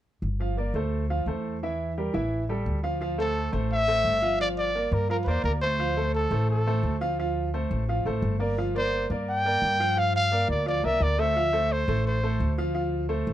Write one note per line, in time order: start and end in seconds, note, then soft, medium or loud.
0.22 0.71 G1 medium
0.40 0.54 F3 medium
0.40 0.54 F4 medium
0.40 0.54 F5 medium
0.57 0.71 A#3 medium
0.57 0.72 A#4 medium
0.57 0.72 D5 medium
0.74 1.23 D2 medium
0.74 1.03 A3 medium
0.74 1.04 A4 medium
0.74 1.04 C5 medium
1.10 1.24 F3 medium
1.10 1.24 F4 medium
1.10 1.24 F5 medium
1.26 2.08 E2 medium
1.26 1.56 A3 medium
1.26 1.56 A4 medium
1.26 1.56 C5 medium
1.63 1.91 E3 medium
1.63 1.91 E4 medium
1.63 1.91 E5 medium
1.98 2.11 G3 medium
1.98 2.11 G4 medium
1.98 2.12 A#4 medium
2.13 2.62 A1 medium
2.13 2.42 E3 medium
2.13 2.42 E4 medium
2.13 2.43 E5 medium
2.49 2.77 G3 medium
2.49 2.78 G4 medium
2.49 2.78 A4 medium
2.66 3.47 D2 medium
2.83 2.98 F3 medium
2.83 2.98 F4 medium
2.83 2.98 F5 medium
3.01 3.15 F3 medium
3.01 3.15 F4 medium
3.01 3.16 F5 medium
3.18 3.47 A3 medium
3.18 3.47 A4 medium
3.18 3.52 A4 medium
3.18 3.47 C5 medium
3.52 4.01 A1 medium
3.52 3.81 A3 medium
3.52 3.81 A4 medium
3.52 3.81 C5 medium
3.73 4.37 E5 loud
3.88 4.16 A3 medium
3.88 4.16 A4 medium
3.88 4.17 C5 medium
4.05 4.86 G1 medium
4.22 4.36 F3 medium
4.22 4.37 F4 medium
4.22 4.37 F5 medium
4.40 4.68 F3 medium
4.40 4.68 F4 medium
4.40 4.49 D5 medium
4.40 4.69 F5 medium
4.58 4.95 D5 medium
4.75 5.03 A#3 medium
4.75 5.04 A#4 medium
4.75 5.04 D5 medium
4.92 5.24 G2 medium
4.92 5.10 A#4 medium
5.09 5.24 F3 medium
5.09 5.24 F4 medium
5.09 5.16 A#4 medium
5.09 5.24 F5 medium
5.23 5.43 E2 medium
5.23 5.28 B4 medium
5.23 5.44 C5 medium
5.28 5.56 A#3 medium
5.28 5.56 A#4 medium
5.28 5.56 D5 medium
5.44 6.25 D2 medium
5.44 5.52 A#4 medium
5.61 5.76 A3 medium
5.61 5.76 A4 medium
5.61 6.10 C5 medium
5.61 5.77 C5 medium
5.79 5.93 F3 medium
5.79 5.94 F4 medium
5.79 5.94 F5 medium
5.97 6.25 A3 medium
5.97 6.25 A4 medium
5.97 6.25 C5 medium
6.14 6.46 A4 medium
6.31 6.79 A1 medium
6.31 6.60 A3 medium
6.31 6.60 A4 medium
6.31 6.60 C5 medium
6.50 6.98 A4 medium
6.67 6.95 A3 medium
6.67 6.95 A4 medium
6.67 6.95 C5 medium
6.83 7.65 D2 medium
7.01 7.15 F3 medium
7.01 7.15 F4 medium
7.01 7.15 F5 medium
7.19 7.47 F3 medium
7.19 7.47 F4 medium
7.19 7.48 F5 medium
7.54 7.82 A3 medium
7.54 7.82 A4 medium
7.54 7.82 C5 medium
7.71 8.03 A1 medium
7.89 8.03 F3 medium
7.89 8.03 F4 medium
7.89 8.03 F5 medium
8.05 8.21 A1 medium
8.05 8.34 A3 medium
8.05 8.34 A4 medium
8.05 8.35 C5 medium
8.22 9.04 G1 medium
8.39 8.54 A#3 medium
8.39 8.54 A#4 medium
8.39 8.54 D5 medium
8.58 8.72 F3 medium
8.58 8.72 F4 medium
8.58 8.72 F5 medium
8.75 9.03 A#3 medium
8.75 9.04 A#4 medium
8.75 9.09 C5 medium
8.75 9.04 D5 medium
9.10 9.58 G2 medium
9.10 9.39 A#3 medium
9.10 9.39 A#4 medium
9.10 9.39 D5 medium
9.29 10.00 G5 loud
9.45 9.74 A#3 medium
9.45 9.74 A#4 medium
9.45 9.74 D5 medium
9.62 10.43 G2 medium
9.80 9.94 F3 medium
9.80 9.94 F4 medium
9.80 9.94 F5 medium
9.96 10.25 F3 medium
9.96 10.25 F4 medium
9.96 10.26 F5 medium
9.96 10.15 F5 loud
10.16 10.48 F5 loud
10.32 10.60 A#3 medium
10.32 10.60 A#4 medium
10.32 10.61 D5 medium
10.49 10.81 D2 medium
10.49 10.66 D5 medium
10.66 10.80 F3 medium
10.66 10.80 F4 medium
10.66 10.87 D5 medium
10.66 10.81 F5 medium
10.84 11.00 C2 medium
10.84 11.12 A#3 medium
10.84 11.13 A#4 medium
10.84 11.13 D5 medium
10.84 11.04 E5 medium
11.00 11.82 D2 medium
11.00 11.21 D5 medium
11.18 11.33 A3 medium
11.18 11.33 A4 medium
11.18 11.33 C5 medium
11.18 11.73 E5 loud
11.36 11.50 F3 medium
11.36 11.51 F4 medium
11.36 11.51 F5 medium
11.53 11.82 A3 medium
11.53 11.82 A4 medium
11.53 11.82 C5 medium
11.72 12.06 C5 medium
11.88 12.37 A1 medium
11.88 12.17 A3 medium
11.88 12.17 A4 medium
11.88 12.17 C5 medium
12.07 12.55 C5 medium
12.23 12.52 A3 medium
12.23 12.52 A4 medium
12.23 12.52 C5 medium
12.40 13.22 D2 medium
12.58 12.72 F3 medium
12.58 12.73 F4 medium
12.58 12.73 F5 medium
12.74 13.04 F3 medium
12.74 13.03 F4 medium
12.74 13.04 F5 medium
13.09 13.33 A3 medium
13.09 13.33 A4 medium
13.09 13.33 C5 medium
13.27 13.33 A1 medium